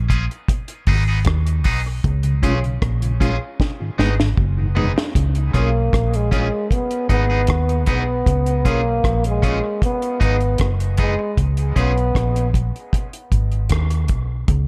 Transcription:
Already playing: A#1
0.08 G#3 C#4 F4 G#4, kick, closed hi-hat
0.31 closed hi-hat
0.48 kick, closed hi-hat
0.68 G#2 D#3, closed hi-hat
0.87 G#1 G#3 B3 D#4 G#4, kick, open hi-hat
1.08 G#2 D#3 B3 D#4 G#4
1.25 D#2, kick, cross-stick, closed hi-hat
1.47 G#2 D#3, closed hi-hat
1.64 B1 G#3 B3 D#4 G#4, kick, open hi-hat
2.04 C#2, kick, closed hi-hat
2.23 C#3, closed hi-hat
2.42 B1 G#3 C#4 F4 G#4, kick, closed hi-hat
2.63 C#3, closed hi-hat
2.82 A#1, kick, cross-stick, closed hi-hat
3.02 C#3, closed hi-hat
3.20 G#3 C#4 F4 G#4, kick, closed hi-hat
3.60 kick, snare
3.81 G#2 D#3
3.98 G#1 G#3 B3 D#4 G#4, snare
4.20 G#2 D#3, snare
4.37 F#1, kick
4.58 G#2 D#3
4.75 G#3 B3 D#4 G#4, floor tom
4.96 muted clean electric guitar stroke, snare
5.15 C#2, kick, closed hi-hat
5.35 closed hi-hat
5.53 B1 A#3 C#4 F4 G#4, kick, cross-stick, closed hi-hat
5.93 A#1, kick, cross-stick, closed hi-hat
6.14 G#3, closed hi-hat
6.31 G#3 C#4 F4 G#4, kick, closed hi-hat
6.71 B3, kick, closed hi-hat
6.91 closed hi-hat
7.09 G#1 B3 D#4 G#4, kick, closed hi-hat
7.30 B3 D#4 G#4
7.47 D#2, kick, cross-stick, closed hi-hat
7.69 closed hi-hat
7.86 B1 B3 D#4 G#4, kick, closed hi-hat
8.26 C#2, kick, closed hi-hat
8.46 closed hi-hat
8.65 B1 A#3 C#4 F4 G#4, kick, closed hi-hat
9.04 A#1, kick, cross-stick, closed hi-hat
9.24 G#3, closed hi-hat
9.42 G#3 C#4 F4 G#4, kick, closed hi-hat
9.82 B3, kick, closed hi-hat
10.02 closed hi-hat
10.20 G#1 B3 D#4 G#4, kick, closed hi-hat
10.40 closed hi-hat
10.58 F#1, kick, cross-stick, closed hi-hat
10.80 closed hi-hat
10.97 G#3 B3 D#4 G#4, kick, closed hi-hat
11.19 muted clean electric guitar stroke
11.37 C#2, kick, closed hi-hat
11.57 closed hi-hat
11.76 B1 B3 C#4 F4 G#4, kick, closed hi-hat
11.97 closed hi-hat
12.15 A#1, kick, cross-stick, closed hi-hat
12.36 closed hi-hat
12.54 kick, closed hi-hat
12.76 closed hi-hat
12.93 kick, closed hi-hat
13.13 closed hi-hat
13.32 G#1, kick, closed hi-hat
13.52 closed hi-hat
13.69 D#2, kick, cross-stick, closed hi-hat
13.90 closed hi-hat
14.08 B1, kick, closed hi-hat
14.48 C#2, kick, closed hi-hat

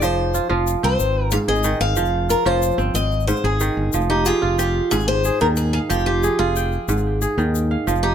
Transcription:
Already playing: C4 G#4
0.02 F1 F3 C5, shaker
0.34 F4, shaker
0.49 F1 F3 F4
0.67 shaker
0.83 C2 C4 C5
0.99 G#1, shaker
1.31 G#2 F5, shaker
1.48 G#1 G#4 D#5
1.55 shaker
1.64 D#3, shaker
1.80 G#1 F5, shaker
1.96 F1 F3, shaker
2.05 shaker
2.29 F4 A#4, shaker
2.46 F1 F3 F4 C5
2.62 shaker
2.78 G1 C4, shaker
2.94 G#1 D#5, shaker
3.11 shaker
3.20 shaker
3.27 G#2 C5, shaker
3.36 shaker
3.44 G#1 G#4
3.60 D#3, shaker
3.77 G1
3.93 F1 F3, shaker
4.10 D#4 G4
4.26 F4 G#4, shaker
4.42 F1 F4
4.58 F4 G4, shaker
4.91 G#1 G#2 G#4, shaker
5.00 shaker
5.08 C5
5.24 G#4, shaker
5.40 D#2 D#3 A#4, shaker
5.56 G#4, shaker
5.73 G#4 F5
5.90 F1 F3 G4, shaker
6.06 F4 G4
6.23 G#4, shaker
6.39 F1 F4 G#4
6.56 G5, shaker
6.72 shaker
6.88 G#1 G#2, shaker
6.97 shaker
7.22 G#4, shaker
7.37 D#2 D#3, shaker
7.55 shaker
7.71 F5
7.87 F1 F3, shaker
7.95 shaker
8.03 D#4 G4

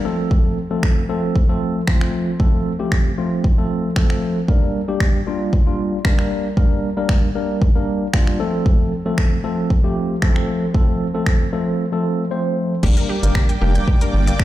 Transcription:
0.05 F3 A3 C4 A4
0.31 kick
0.71 F3 A3 C4 A4
0.83 finger snap, kick
1.09 F3 A3 C4 A4
1.36 kick
1.49 F3 A3 C4 A4
1.87 F3 A3 C4 F4, finger snap, kick
2.01 finger snap
2.40 F3 A3 C4 A4, kick
2.79 F3 A3 C4 G4
2.92 finger snap, kick
3.18 F3 A3 C4 F4
3.44 kick
3.58 F3 A3 C4 A4
3.96 F3 A3 C4 A4, finger snap, kick
4.10 finger snap
4.48 G3 A#3 D4 A#4, kick
4.88 G3 A#3 D4 G4
5.00 finger snap, kick
5.26 G3 A#3 D4 F4
5.53 kick
5.66 G3 A#3 D4 F4
6.05 G3 A#3 D4 A#4, finger snap, kick
6.19 finger snap
6.57 G3 A#3 D4 A#4, kick
6.97 G3 A#3 D4 A#4
7.09 finger snap, kick
7.35 G3 A#3 D4 A#4
7.62 kick
7.75 G3 A#3 D4 A#4
8.13 G3 A#3 D4 F4, finger snap, kick
8.27 finger snap
8.39 F3 A3 C4 A4
8.66 kick
9.05 F3 A3 C4 A4
9.18 finger snap, kick
9.44 F3 A3 C4 A4
9.70 kick
9.84 F3 A3 C4 G4
10.22 F3 A3 C4 A4, finger snap, kick
10.36 finger snap
10.74 F3 A3 C4 A4, kick
11.14 F3 A3 C4 A4
11.26 finger snap, kick
11.52 F3 A3 C4 A4
11.92 F3 A3 C4 A4
12.31 F3 A3 C4 C5
12.83 G1 G3 A#3 D4 G4 A#4 D5 G5 D6, kick, crash
12.97 A#4, closed hi-hat
13.09 G4
13.23 G1 G3 A#3 D4 A#4, closed hi-hat
13.35 G4, finger snap, kick
13.49 G5, closed hi-hat
13.61 F1 G3 A#3 D4 G4 A#4
13.75 G6, closed hi-hat
13.88 G4, kick
14.01 G3 A#3 D4 A#4, closed hi-hat
14.14 G1
14.27 D5, closed hi-hat
14.39 G3 A#3 D4 G4 A#4, finger snap, kick

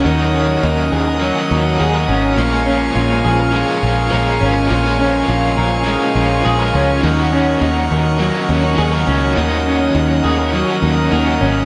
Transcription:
Already playing: F#3 C#4 D#4 A#4 D#5 F#5
0.03 D#2 D#3 A#3 D#6
0.08 C#4 F#4
0.34 C#4
0.63 D#2 D#4
0.92 D#2 G#4
1.07 A#4
1.19 D#3 F#3 A#3 C#4
1.25 F#4
1.51 D#2 D#4
1.78 D#2 D#3 A#3 C#4 G#4
1.84 F#4
1.94 A#4
2.08 G#1 C#4
2.35 A#1 A#2 F3 F5 G#5 C#6
2.40 G#3 C#4 F4
2.66 C#4
2.95 A#1 F4
3.25 A#1 G#4
3.39 A#4
3.52 F3 G#3 C#4
3.57 F4
3.82 A#1 F4
4.09 A#1 F3 G#3 C#4 A#4
4.15 F4
4.41 G#1 C#4
4.67 A#1 A#2 F3
4.71 G#3 C#4 F4
4.99 C#4
5.28 A#1 F4
5.57 A#1 A#4
5.84 F3 G#3 C#4
5.89 F4
6.15 A#1 F4
6.42 A#1 F3 G#3 C#4 G#4
6.48 F4
6.59 A#4
6.74 C#2 C#4
7.00 D#2 D#3 A#3 A#4 D#5 F#5
7.06 C#4 F#4
7.32 C#4
7.61 D#2 D#4
7.90 D#2 A#4
8.17 D#3 F#3 A#3 C#4
8.23 F#4
8.49 D#2 C#4
8.63 D#4
8.76 D#2 D#3 A#3 C#4 G#4
8.82 F#4
8.92 A#4
9.07 C#2 C#4
9.35 D#2 D#3 A#3 C#4 F#4 D#6
9.66 C#4
9.95 D#2 D#4
10.22 D#2 C#4 F#4 G#4
10.28 A#3
10.38 A#4
10.52 D#3 F#3 A#3
10.56 C#4 F#4
10.82 D#2 D#4
11.11 D#2 D#3 A#3 C#4 A#4
11.16 F#4
11.41 G#1 C#4

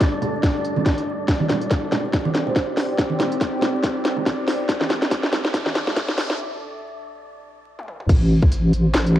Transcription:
Already playing: G3 D4 A4 D5
0.01 kick, snare, closed hi-hat
0.22 closed hi-hat, low conga
0.43 kick, snare, closed hi-hat
0.65 closed hi-hat
0.76 high conga, low conga
0.86 kick, snare, closed hi-hat
0.98 closed hi-hat
1.28 C4 G4 D5, kick, snare, closed hi-hat, riser
1.40 high conga
1.50 snare, closed hi-hat, low conga
1.62 closed hi-hat
1.71 kick, snare, closed hi-hat
1.92 snare, closed hi-hat, low conga
2.13 kick, snare, closed hi-hat
2.25 high conga
2.35 snare, closed hi-hat
2.47 C5, low conga
2.56 kick, snare, closed hi-hat
2.77 snare, open hi-hat
2.99 kick, snare, closed hi-hat
3.10 high conga
3.19 snare, closed hi-hat, low conga
3.32 closed hi-hat
3.41 kick, snare, closed hi-hat
3.53 G4
3.62 snare, closed hi-hat, low conga
3.84 kick, snare, closed hi-hat
4.05 snare, closed hi-hat
4.17 high conga, low conga
4.26 kick, snare, closed hi-hat
4.48 snare, open hi-hat
4.69 D4 A4 E5, kick, snare, closed hi-hat
4.81 snare, high conga
4.90 snare, closed hi-hat, low conga
5.02 snare, closed hi-hat
5.11 kick, snare, closed hi-hat
5.23 snare
5.32 snare, closed hi-hat, low conga
5.45 snare
5.54 kick, snare, closed hi-hat
5.66 snare, high conga
5.75 snare, closed hi-hat
5.87 snare, low conga
5.97 kick, snare, closed hi-hat
6.09 snare
6.18 snare, open hi-hat
6.30 snare
7.79 high tom
7.88 mid tom
8.00 mid tom
8.09 A1 A3 E4 C5, kick, closed hi-hat, crash, impact
8.43 kick
8.52 closed hi-hat
8.73 A1, closed hi-hat
8.94 A1, snare, clap, closed hi-hat
9.06 closed hi-hat
9.16 finger snap

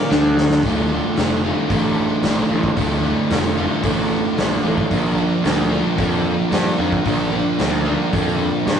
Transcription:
0.10 D2 D3 D4, snare
0.38 snare
0.51 snare
0.63 D1 D2 A2 D3 A3, kick, open hi-hat
0.67 F4
0.89 A3 F4
0.94 D3
1.16 F1 A2 D3 A3, snare, open hi-hat
1.21 F4
1.44 A3 F4
1.48 D3
1.69 A1 D2 A2 D3 A3, kick, open hi-hat
1.74 F4
2.23 A#1 A2 D3 A3, snare, open hi-hat
2.27 F4
2.49 A1 A3 F4
2.53 D3
2.64 kick
2.75 D1 D2 A2 D3 A3, kick, open hi-hat
2.80 F4
3.02 A3 F4
3.06 D3
3.28 F1 A2 D3 A3, snare, open hi-hat
3.33 F4
3.55 A3 F4
3.60 D3
3.82 A1 D2 A2 D3 A3 F4, kick, open hi-hat
4.35 A#1 A2 D3 A3, snare, open hi-hat
4.40 F4
4.63 A1 A3 F4
4.67 D3
4.78 kick
4.89 A#1 A#2 F3 A#3 D4 F4, kick, open hi-hat
4.94 A#4
5.15 D4 F4 A#4
5.20 A#3
5.42 D2 A#3 D4 F4, open hi-hat
5.46 A#4, snare
5.69 D4 F4 A#4
5.73 A#3
5.96 F2 A#2 F3 A#3 D4, kick, open hi-hat
6.00 F4 A#4
6.50 G2 A#3 D4 F4, snare, open hi-hat
6.55 A#4
6.78 F2 D4 F4 A#4
6.82 A#3
6.92 kick
7.03 A#1 A#2 F3 A#3 D4 F4, kick, open hi-hat
7.08 A#4
7.30 D4 F4 A#4
7.35 A#3
7.58 D2 A#3 D4 F4 A#4, snare, open hi-hat
7.86 D4 F4 A#4
7.90 A#3
8.12 F2 A#2 F3 A#3 D4 F4 A#4, kick, open hi-hat
8.65 G2 A#3 D4 F4, snare, open hi-hat
8.70 A#4

